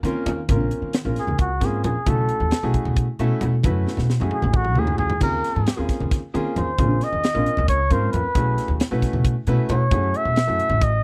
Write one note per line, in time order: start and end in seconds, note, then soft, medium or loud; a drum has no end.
0.03 0.13 D#3 loud
0.03 0.38 A#3 medium
0.03 0.38 C4 medium
0.03 0.38 C#4 medium
0.03 0.38 F4 medium
0.03 0.38 A#4 loud
0.03 closed hi-hat medium
0.26 0.51 D#3 medium
0.26 closed hi-hat medium
0.26 low conga medium
0.49 0.69 A#1 loud
0.49 0.91 A#3 medium
0.49 0.92 C4 medium
0.49 0.92 C#4 medium
0.49 0.91 F4 medium
0.49 0.92 A#4 medium
0.49 kick medium
0.49 closed hi-hat medium
0.49 high conga medium
0.61 low conga soft
0.71 closed hi-hat medium
0.82 1.02 D#3 medium
0.93 snare loud
0.93 closed hi-hat medium
1.05 1.15 A#1 medium
1.05 1.47 A#3 medium
1.05 1.47 C4 medium
1.05 1.47 C#4 medium
1.05 1.47 F4 medium
1.05 1.47 A#4 medium
1.16 1.39 G#4 medium
1.16 snare soft
1.16 closed hi-hat medium
1.27 1.63 C#2 medium
1.27 high conga medium
1.27 low conga medium
1.39 1.67 F#4 medium
1.39 kick loud
1.39 closed hi-hat medium
1.60 1.81 G#2 medium
1.60 1.94 A#3 medium
1.60 1.94 C4 medium
1.60 1.95 C#4 medium
1.60 1.94 F4 medium
1.60 1.95 G#4 medium
1.60 kick medium
1.60 snare soft
1.60 closed hi-hat medium
1.65 1.85 G#4 medium
1.84 1.94 A#1 medium
1.84 2.10 G#4 medium
1.84 closed hi-hat medium
1.84 low conga medium
2.06 2.26 B1 medium
2.06 2.48 A3 medium
2.06 2.48 C#4 medium
2.06 2.48 E4 medium
2.06 2.48 F#4 medium
2.06 2.48 A4 medium
2.06 2.75 A4 medium
2.06 kick medium
2.06 closed hi-hat medium
2.06 high conga medium
2.29 closed hi-hat medium
2.40 2.50 D#2 medium
2.40 low conga medium
2.51 snare loud
2.51 closed hi-hat medium
2.63 2.73 B1 medium
2.63 3.05 A3 medium
2.63 3.05 C#4 medium
2.63 3.04 E4 medium
2.63 3.05 F#4 medium
2.63 3.05 G#4 medium
2.74 kick medium
2.74 closed hi-hat medium
2.85 3.05 B2 medium
2.85 high conga medium
2.85 low conga medium
2.96 kick loud
2.96 closed hi-hat medium
3.19 3.29 B2 loud
3.19 3.53 A3 medium
3.19 3.53 C#4 medium
3.19 3.53 E4 medium
3.19 3.53 F#4 medium
3.19 3.53 A4 loud
3.19 closed hi-hat medium
3.41 3.66 B2 medium
3.41 closed hi-hat medium
3.41 low conga medium
3.63 3.83 F#2 loud
3.63 4.06 A3 medium
3.63 4.06 C#4 medium
3.63 4.06 E4 medium
3.63 4.06 F#4 medium
3.63 4.06 B4 medium
3.63 kick loud
3.63 closed hi-hat medium
3.63 high conga medium
3.87 snare medium
3.87 low conga soft
3.97 4.17 B2 medium
3.97 snare medium
3.97 low conga medium
4.10 snare medium
4.20 4.30 F#2 loud
4.20 4.62 A3 medium
4.20 4.62 C#4 medium
4.20 4.62 E4 medium
4.20 4.62 F#4 medium
4.20 4.62 G#4 medium
4.20 high tom medium
4.31 4.58 G#4 medium
4.31 high tom medium
4.42 4.77 A1 loud
4.42 mid tom medium
4.42 high conga medium
4.42 low conga medium
4.53 4.81 F#4 loud
4.53 kick loud
4.53 mid tom medium
4.53 low conga soft
4.65 mid tom medium
4.75 4.96 D#2 medium
4.75 5.10 A3 medium
4.75 5.10 C#4 medium
4.75 5.10 E4 medium
4.75 5.10 F#4 medium
4.75 5.10 G#4 medium
4.75 mid tom medium
4.75 high conga medium
4.80 4.98 G#4 medium
4.87 floor tom medium
4.87 high conga medium
4.98 5.09 C#2 medium
4.98 5.20 G#4 medium
4.98 floor tom medium
4.98 low conga medium
5.10 floor tom medium
5.10 low conga medium
5.21 5.41 D#2 medium
5.21 5.63 A#3 medium
5.21 5.63 C4 medium
5.21 5.63 C#4 medium
5.21 5.63 F4 medium
5.21 5.63 G#4 medium
5.21 5.86 A#4 medium
5.21 kick loud
5.21 closed hi-hat medium
5.21 crash medium
5.21 high conga medium
5.32 low conga soft
5.44 snare soft
5.44 closed hi-hat medium
5.56 5.65 G#2 medium
5.56 low conga medium
5.67 snare loud
5.67 closed hi-hat medium
5.76 5.88 D#2 medium
5.76 6.18 A#3 medium
5.76 6.19 C4 medium
5.76 6.19 C#4 medium
5.76 6.19 F4 medium
5.76 6.19 G#4 medium
5.89 kick medium
5.89 snare soft
5.89 closed hi-hat medium
6.01 6.20 D#3 medium
6.01 high conga medium
6.01 low conga medium
6.11 kick loud
6.11 snare soft
6.11 closed hi-hat medium
6.34 6.44 D#3 loud
6.34 6.67 A#3 medium
6.34 6.67 C4 medium
6.34 6.67 C#4 medium
6.34 6.67 F4 medium
6.34 6.67 G#4 loud
6.34 closed hi-hat medium
6.56 6.80 D#3 medium
6.56 7.05 C5 medium
6.56 closed hi-hat medium
6.56 low conga medium
6.78 6.98 A#1 loud
6.78 7.20 A#3 medium
6.78 7.20 C4 medium
6.78 7.20 C#4 medium
6.78 7.20 F4 medium
6.78 7.20 G#4 medium
6.78 kick loud
6.78 closed hi-hat medium
6.78 high conga medium
6.91 low conga soft
7.01 7.68 D#5 loud
7.01 snare soft
7.01 closed hi-hat medium
7.13 7.32 D#3 medium
7.13 low conga medium
7.24 snare loud
7.24 closed hi-hat medium
7.34 7.44 A#1 loud
7.34 7.76 A#3 medium
7.34 7.76 C4 medium
7.34 7.76 C#4 medium
7.34 7.76 F4 medium
7.34 7.76 A#4 medium
7.46 closed hi-hat medium
7.57 7.92 C#2 loud
7.57 high conga medium
7.57 low conga medium
7.68 7.94 C#5 loud
7.68 kick loud
7.68 closed hi-hat medium
7.90 8.10 G#2 medium
7.90 8.23 A#3 medium
7.90 8.23 C4 medium
7.90 8.24 C#4 medium
7.90 8.24 F4 medium
7.90 8.24 A#4 medium
7.90 8.11 C5 medium
7.90 kick medium
7.90 closed hi-hat medium
8.12 8.23 F#2 medium
8.12 8.76 B4 medium
8.12 closed hi-hat medium
8.12 low conga medium
8.35 8.55 B1 loud
8.35 8.77 A3 medium
8.35 8.77 C#4 medium
8.35 8.77 E4 medium
8.35 8.77 F#4 medium
8.35 8.77 G#4 medium
8.35 kick loud
8.35 closed hi-hat medium
8.35 high conga medium
8.47 low conga soft
8.58 snare soft
8.58 closed hi-hat medium
8.68 8.79 D#2 medium
8.68 low conga medium
8.80 snare loud
8.80 closed hi-hat medium
8.91 9.01 B1 medium
8.91 9.33 A3 medium
8.91 9.33 C#4 medium
8.91 9.33 E4 medium
8.91 9.33 F#4 medium
8.91 9.33 B4 loud
9.02 kick medium
9.02 snare soft
9.02 closed hi-hat medium
9.13 9.33 B2 medium
9.13 high conga medium
9.13 low conga medium
9.25 kick loud
9.25 closed hi-hat medium
9.47 9.57 B2 loud
9.47 9.81 A3 medium
9.47 9.81 C#4 medium
9.47 9.81 E4 medium
9.47 9.81 F#4 medium
9.47 9.81 B4 loud
9.47 closed hi-hat medium
9.69 9.93 B2 medium
9.69 10.18 C#5 medium
9.69 closed hi-hat medium
9.69 low conga loud
9.91 10.11 F#2 loud
9.91 10.34 A3 medium
9.91 10.34 C#4 medium
9.91 10.34 E4 medium
9.91 10.34 F#4 medium
9.91 10.34 G#4 medium
9.91 kick loud
9.91 closed hi-hat medium
9.91 high conga medium
10.03 low conga soft
10.14 10.85 E5 loud
10.14 closed hi-hat medium
10.14 low conga soft
10.25 10.45 B2 medium
10.25 low conga medium
10.36 snare loud
10.36 closed hi-hat medium
10.47 10.58 F#2 medium
10.47 10.89 A3 medium
10.47 10.90 C#4 medium
10.47 10.89 E4 medium
10.47 10.90 F#4 medium
10.47 10.89 A4 medium
10.59 closed hi-hat medium
10.59 low conga soft
10.70 11.03 A1 loud
10.70 high conga medium
10.70 low conga medium
10.81 11.03 D#5 medium
10.81 kick loud
10.81 closed hi-hat medium
10.92 low conga soft